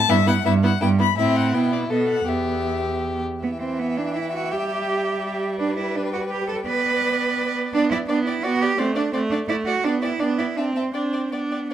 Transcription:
Already playing: A5
0.09 G2 B3 E4 E5
0.26 B3 E4 F#5
0.45 G2 B3 E4 E5
0.63 B3 E4 F#5
0.81 G2 B3 E4 G5
0.99 B3 E4 B5
1.17 A2 C4 E4 E5
1.36 F#5
1.53 B2 B3 E4 G5
1.72 D5
1.90 B2 B3 A4 D#5
2.09 F#5
2.28 E2 B3 G4 E5
3.42 E3 B3 E5 G5
3.61 C4
3.79 B3
3.97 D4
4.16 E4
4.33 F#4
4.51 G3 G4
5.59 D4 B4 G5
5.77 E4
5.96 D4
6.13 F#4
6.31 G4
6.48 A4
6.66 B3 B4 D5
7.74 B3 D4 D5 G5
7.91 E4 D5 G5
8.08 B3 D4 D5 G5
8.25 E4 D5 G5
8.43 B3 F#4 D5 G5
8.62 G4 D5 G5
8.78 A3 C4 D5 F#5
8.95 D4 D5 F#5
9.13 A3 C4 D5 F#5
9.30 D4 D5 F#5
9.48 A3 E4 D5 F#5
9.66 F#4 D5 F#5
9.84 B3 D4 D5 G5
10.02 E4 D5 G5
10.20 B3 D4 D5 G5
10.38 E4 D5 G5
10.57 C4 D4 E5 A5
10.76 C4 E5 A5
10.93 C4 D4 D5 G5
11.13 D5 G5
11.32 B3 D4 D5 G5
11.51 D5 G5
11.70 D4 F#5

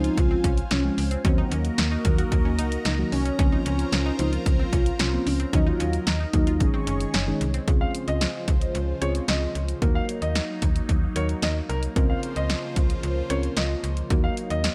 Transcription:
Already playing: F3 G#3 C4 C#4 D#4 F4 C5 F5 G#5
0.04 F4, closed hi-hat
0.17 C#2 F4, kick, closed hi-hat
0.31 C4
0.44 C2 C#4, kick, closed hi-hat
0.57 closed hi-hat
0.71 C2 C#4, snare, closed hi-hat
0.84 F3 G#3 C4 C#4 F4
0.98 C#2, open hi-hat
1.11 C4, closed hi-hat
1.25 D#2 D#3 F#3 A#3 C4 C#4 D#4 F#4 A#4 D#5 A#5, kick, closed hi-hat
1.38 D#4
1.51 D#2 A#3 C#4, closed hi-hat
1.65 closed hi-hat
1.78 D#2, snare, closed hi-hat
1.92 D#4
2.05 D#2 D#3 F#3 A#3 D#4 F#4, kick, closed hi-hat
2.18 F#4, closed hi-hat
2.32 D#2, kick, closed hi-hat
2.45 C#4
2.59 C#2 D#4, closed hi-hat
2.72 closed hi-hat
2.85 C#2 D#4, snare, closed hi-hat
2.99 D#3 F#3 A#3 D#4 F#4
3.12 C2 C#4, open hi-hat
3.25 C#4, closed hi-hat
3.39 C#2 F3 A#3 C4 C#4 F4 A#4 C5, kick, closed hi-hat
3.52 D#4
3.66 C#2 C#4, closed hi-hat
3.79 closed hi-hat
3.92 C#2, snare, closed hi-hat
4.06 D#4
4.19 C#2 F3 A#3 C4 C#4 D#4 F4, closed hi-hat
4.33 F4, closed hi-hat
4.46 C#2 F4, kick, closed hi-hat
4.59 C4
4.73 C2 C#4, kick, closed hi-hat
4.86 closed hi-hat
4.99 C2 C#4, snare, closed hi-hat
5.13 F3 A#3 C4 C#4 F4
5.26 C#2 C#4, open hi-hat
5.40 C4, closed hi-hat
5.53 D#2 D#3 F#3 A#3 C#4 D#4 F#4 A#4 D#5, kick, closed hi-hat
5.67 D#4 F4
5.80 D#2 C#4, closed hi-hat
5.93 closed hi-hat
6.07 D#2 D#4, snare, closed hi-hat
6.20 D#4
6.33 D#2 D#3 F#3 A#3 D#4 F#4, kick, closed hi-hat
6.47 F4, closed hi-hat
6.60 G#1 D#3 G#3 C#4 D#4 G#4 C#5 C#6, kick, closed hi-hat
6.74 C4
6.87 F#1 C#4, closed hi-hat
7.00 closed hi-hat
7.14 F#1 C#4, snare, closed hi-hat
7.27 D#3 G#3 C#4 D#4 G#4
7.41 C2, closed hi-hat
7.54 C4, closed hi-hat
7.67 C#2 C#3 F3 G#3 C4 C#4 F4 G#4 C5, kick, closed hi-hat
7.81 F5
7.95 closed hi-hat
8.08 C#2 D#5, closed hi-hat
8.21 snare, closed hi-hat
8.48 C#2, kick, closed hi-hat
8.61 closed hi-hat
8.75 C#2, closed hi-hat
9.01 C#2 C4 C#4 F4 G#4 C#5, closed hi-hat
9.15 closed hi-hat
9.28 C#2 D#5, snare, closed hi-hat
9.55 C#2, closed hi-hat
9.68 closed hi-hat
9.82 D#2 F#3 A#3 D#4 F#4 A#4, kick, closed hi-hat
9.95 F5
10.09 closed hi-hat
10.22 D#2 D#5, closed hi-hat
10.35 snare, closed hi-hat
10.62 D#2, kick, closed hi-hat
10.76 closed hi-hat
10.89 D#2, kick, closed hi-hat
11.16 D#2 A#3 D#4 F#4 A#4 C#5, closed hi-hat
11.29 closed hi-hat
11.42 D#2 D#5, snare, closed hi-hat
11.69 C2 A#4, closed hi-hat
11.83 closed hi-hat
11.96 C#2 C#3 F3 C4 C#4 F4 A#4 C5, kick, closed hi-hat
12.10 F5
12.23 closed hi-hat
12.36 C#2 D#5, closed hi-hat
12.50 snare, closed hi-hat
12.76 C#2, kick, closed hi-hat
12.90 closed hi-hat
13.03 C#2, closed hi-hat
13.30 C#2 C4 C#4 F4 A#4 C#5, closed hi-hat
13.43 closed hi-hat
13.57 C#2 D#5, snare, closed hi-hat
13.83 C#2, closed hi-hat
13.97 closed hi-hat
14.10 D#2 F#3 A#3 D#4 F#4 A#4, kick, closed hi-hat
14.24 F5
14.37 closed hi-hat
14.50 D#2 D#5, closed hi-hat
14.64 snare, closed hi-hat

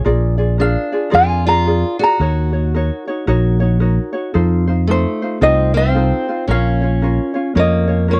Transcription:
0.04 A#1 F4 G#4 A#4 D5
0.38 F4 G#4 D5
0.58 D4 F4 G#4 A#4 D5 F5
0.92 F4 G#4 D5
1.10 F2 F4 G#4 A#4 D5
1.15 G#5
1.45 F4 G#4 D5 A#5
1.66 F4 G#4 A#4 D5
1.99 F4 F#4 G#4 D5
2.03 A#5
2.19 D#2 D#4 F#4 A#4 C#5
2.53 D#4 F#4 C#5
2.74 D#4 F#4 A#4 C#5
3.08 D#4 F#4 C#5
3.27 A#1 D#4 F#4 A#4 C#5
3.60 D#4 F#4 C#5
3.80 D#4 F#4 A#4 C#5
4.13 D#4 F#4 C#5
4.34 F2 D#4 F4 A4 C5
4.67 D#4 F4 C5
4.87 A3 D#4 F4 A4 C5
5.22 D#4 F4 C5
5.41 C2 C4 D#4 F4 A4 C5 D#5
5.74 C4 D#4 F4 C5 F5
5.94 D#4 F4 A4 C5
6.28 D#4 F4 C5
6.48 A#1 C#4 F4 A#4 C#5 F5
6.82 C#4 F4 C#5
7.02 C#4 F4 A#4 C#5
7.34 C#4 F4 C#5
7.55 F2 A#3 C#4 F4 A#4 C#5
7.59 D#5
7.88 C#4 F4 C#5
8.08 A#3 C#4 F4 A#4 C#5
8.13 C#5

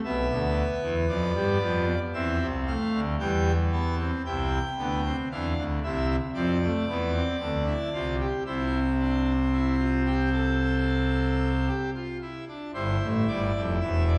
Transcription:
0.04 B1 B2 B3 E5
0.30 D2 D3
0.82 E2 E3
1.08 F2 F3 D5
1.35 G2 G3
1.61 F2 F3
2.13 E2 E3 C4 E5
2.40 C2 C3
2.67 A3 F5
2.93 D2 D3
3.19 E2 E3 G3 G5
3.72 B3 A5
3.99 C4
4.26 C2 C3 E4 G5
4.78 D2 D3 B3
5.06 C4
5.31 E2 E3 D4 F5
5.57 D2 D3
5.83 C2 C3 E4 E5
6.34 F2 F3 C4 D5
6.63 A3
6.88 E2 E3 B3
7.14 C4
7.40 D2 D3 D4
7.67 E4
7.93 C2 C3 F4
8.20 G4
8.46 C2 C3 E4 C5
8.99 D4
9.53 E4
9.79 F4
10.06 G4
10.33 A4
11.67 G4
11.94 F4
12.22 E4
12.48 D4
12.74 G1 G2 E4 C5
13.02 A1 A2
13.28 G1 G2 D5
13.55 F1 F2
13.81 E1 E2 E5
14.08 D5

